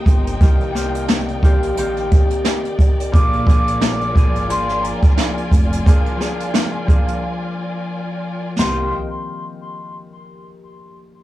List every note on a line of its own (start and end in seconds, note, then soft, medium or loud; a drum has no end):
0.00 0.40 D#3 medium
0.00 0.42 A#3 medium
0.00 0.41 C4 medium
0.00 3.09 D#4 medium
0.00 0.42 G4 loud
0.00 8.55 A#4 medium
0.00 0.38 C5 medium
0.00 3.09 G5 medium
0.06 0.35 G1 loud
0.06 kick medium
0.06 closed hi-hat medium
0.27 closed hi-hat medium
0.41 1.62 C2 loud
0.41 0.71 D#3 loud
0.41 0.73 A#3 medium
0.41 0.73 C4 medium
0.41 0.73 G4 loud
0.41 8.55 D5 medium
0.41 kick loud
0.41 closed hi-hat loud
0.60 closed hi-hat soft
0.72 1.42 D#3 medium
0.72 1.38 A#3 medium
0.72 1.38 G4 loud
0.72 snare soft
0.76 1.38 C4 medium
0.76 closed hi-hat medium
0.95 closed hi-hat medium
1.08 snare loud
1.08 closed hi-hat medium
1.28 closed hi-hat soft
1.43 1.77 D#3 medium
1.43 1.75 A#3 medium
1.43 1.75 C4 medium
1.43 1.75 G4 loud
1.43 kick loud
1.43 closed hi-hat medium
1.62 2.19 A#1 medium
1.62 closed hi-hat medium
1.77 3.19 D#3 loud
1.77 3.12 A#3 medium
1.77 4.78 C4 medium
1.77 3.19 G4 loud
1.77 closed hi-hat loud
1.97 closed hi-hat soft
2.11 kick loud
2.11 closed hi-hat medium
2.30 closed hi-hat medium
2.45 snare loud
2.45 closed hi-hat loud
2.65 closed hi-hat soft
2.79 kick medium
2.79 closed hi-hat medium
3.00 closed hi-hat medium
3.12 4.35 A#1 loud
3.12 3.47 F3 loud
3.12 3.45 A#3 medium
3.12 3.45 D4 medium
3.12 8.55 F4 medium
3.12 3.45 G#4 loud
3.12 8.55 G#5 medium
3.12 3.44 D6 loud
3.12 kick loud
3.12 closed hi-hat loud
3.33 closed hi-hat soft
3.47 4.14 F3 loud
3.47 4.12 A#3 medium
3.47 4.12 D4 medium
3.47 4.12 G#4 loud
3.47 kick loud
3.47 closed hi-hat medium
3.68 closed hi-hat medium
3.81 snare loud
3.81 closed hi-hat medium
4.01 closed hi-hat soft
4.14 4.48 F3 loud
4.14 4.48 A#3 medium
4.14 4.48 D4 medium
4.14 4.48 G#4 loud
4.14 kick loud
4.14 closed hi-hat medium
4.35 4.92 G#1 medium
4.35 closed hi-hat medium
4.49 5.85 F3 loud
4.49 5.87 A#3 medium
4.49 5.88 D4 medium
4.49 5.87 G#4 loud
4.49 4.81 C6 medium
4.49 closed hi-hat loud
4.69 snare soft
4.83 5.14 A#5 medium
4.83 closed hi-hat medium
5.03 kick loud
5.03 closed hi-hat medium
5.17 snare loud
5.17 closed hi-hat medium
5.38 closed hi-hat soft
5.52 5.80 F1 loud
5.52 kick medium
5.52 closed hi-hat medium
5.73 closed hi-hat medium
5.85 6.18 F3 loud
5.85 6.18 A#3 medium
5.85 6.19 D4 medium
5.85 6.19 G#4 loud
5.85 kick loud
5.85 closed hi-hat loud
6.06 closed hi-hat soft
6.18 6.86 F3 medium
6.18 6.84 A#3 medium
6.18 6.84 G#4 loud
6.18 snare soft
6.18 closed hi-hat medium
6.22 6.84 D4 medium
6.40 closed hi-hat medium
6.54 snare loud
6.54 closed hi-hat medium
6.87 8.64 F3 medium
6.87 7.20 A#3 medium
6.87 7.21 G#4 loud
6.87 kick loud
6.87 closed hi-hat medium
6.91 7.21 D4 medium
7.08 closed hi-hat medium
8.58 8.91 C2 loud
8.58 8.85 D#3 medium
8.58 8.85 A#3 medium
8.58 8.85 C4 medium
8.58 8.91 D#4 medium
8.58 8.85 G4 loud
8.58 8.91 A#4 medium
8.58 8.91 C5 medium
8.58 8.91 G5 medium
8.58 8.91 C6 medium
8.58 snare loud
8.58 splash loud